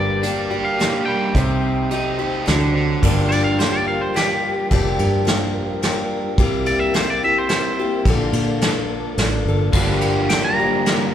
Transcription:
Already playing: G1 G2 D3 G3 A#3 D4 G4 A#4 D5 G5 D6
0.23 G3 A#3 D4 G4, closed hi-hat
0.51 G3 A#3 D4 G4
0.65 F5
0.79 G3 A#3 D4 G4, snare, closed hi-hat
1.05 G3 G5
1.34 C2 C3 G3 C4 D#4 C5 D#6, kick, closed hi-hat
1.38 G4
1.91 G3 C4 D#4 G4, closed hi-hat
2.19 C4 D#4 G4
2.46 D2 D3 F#3 C4 D4 A4 F#5 D6, snare, closed hi-hat
2.76 D3
3.02 G1 G2 D3 F3 G3 A#3 D4 F4 G4 A#4, kick, crash
3.29 D5, ride
3.44 F5
3.59 F3 A#3 D4 G4 C5, snare, ride
3.73 D5
3.88 F5
4.02 C5
4.14 F3 A#3 D4 G4, snare, ride
4.71 F1 G2 D3 F3 A#3 D4 G4, kick, ride
4.99 G2, ride
5.25 F3 A#3 D4 G4, snare, ride
5.82 F3 A#3 D4 G4, snare, ride
6.38 C2 C3 G3 A#3 C4 E4 G4 E5, kick, ride
6.66 D5, ride
6.79 E5
6.94 G3 A#3 E4 C5, snare, ride
6.98 G4
7.10 D5
7.23 A#3 E4 G4 E5
7.38 C5
7.49 G3 A#3 C5, snare, ride
7.53 E4 G4
7.79 A#3 E4 G4
8.05 A#1 A#2 D3 F3 A#3 D4 A4 D5, kick, ride
8.10 A4
8.33 A#2, ride
8.61 F3 A#3 D4, snare, ride
8.65 A4
9.18 A1 F3 A#3 D4, snare, ride
9.22 A4
9.45 G1 D4 A4
9.50 F3 A#3
9.73 G1 G2 D3 F3 G3 A#3 D4 F4, kick, crash
9.77 G4 A#4
10.01 ride
10.29 F3 A#3 D4 G5, snare, ride
10.34 G4
10.45 A#5
10.59 F3 A#3 D4 G4
10.86 F3 A#3 D4 G4, snare, ride

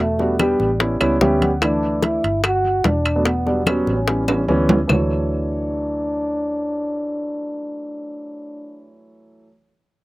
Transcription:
Already playing: E1
0.00 A3
0.19 G3 B3 D4 F#4, high bongo, high conga
0.39 G3 B3 D4 G4, high bongo, high conga, high timbale, low timbale, claves
0.60 A1, high bongo, high conga
0.80 G3 B3 C#4 E4, high bongo, high conga, high timbale
1.01 C#2 G3 B3 C#4 E4 C#5, high conga, high timbale, claves
1.21 D2 G3 B3 C#4 G4 E5, high bongo, low bongo, high conga, low timbale
1.41 F#5, high bongo, high conga, high timbale
1.62 E3 A3 D4 E4, high bongo, high conga, high timbale, claves
1.82 high conga
2.02 E4, high bongo, high conga, high timbale, low timbale
2.24 G1, high timbale
2.44 F#4, high bongo, high conga, high timbale, claves
2.64 high conga
2.84 E1 D4, high bongo, low bongo, high conga, high timbale, low timbale
3.05 high timbale, claves
3.16 F#3 A3 B3 D4
3.25 B3, high bongo, high conga, high timbale
3.46 F#3 G3 B3 D4, high bongo, high conga
3.66 F#3 G3 B3 C#4, high bongo, high conga, high timbale, low timbale, claves
3.87 A1 C#4, high bongo, high conga
4.07 E3 G3 B3 C#4, high bongo, high conga, high timbale
4.28 E3 G3 B3 C#4, high bongo, high conga, high timbale, claves
4.48 D2 E3 G3 B3 C#4, high conga, low timbale
4.69 low bongo, high conga, low timbale
4.88 D2 E3 F#3 A3 D4 C#5, low bongo, low conga, low timbale, claves

